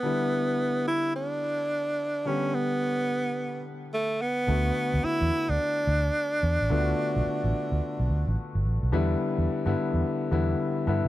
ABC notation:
X:1
M:4/4
L:1/16
Q:"Swing 16ths" 1/4=108
K:Em
V:1 name="Tenor saxophone"
B,6 E2 D8 | ^C2 B,8 z2 A,2 B,2- | B,4 E3 D8- D- | D12 z4 |
z16 |]
V:2 name="Grand piano"
[D,G,B,E]16 | [D,G,B,G]16 | [D,A,B,F]16 | [D,A,B,=F^F]16 |
[D,G,B,E]3 z2 [D,G,B,E]3 z2 [D,G,B,E]2 z2 [D,G,B,E]2 |]
V:3 name="Fingered electric bass" clef=bass
z16 | z16 | D,,2 z D,, z E,, z D,, z2 D,,2 z2 E,, A,,, | D,,2 z B,,, z A,,, z D,, z B,,, D,, A,,, z G,,, A,,, B,,, |
E,,2 z E,, z G,, z E,, z2 E,,2 z2 G,, B,,, |]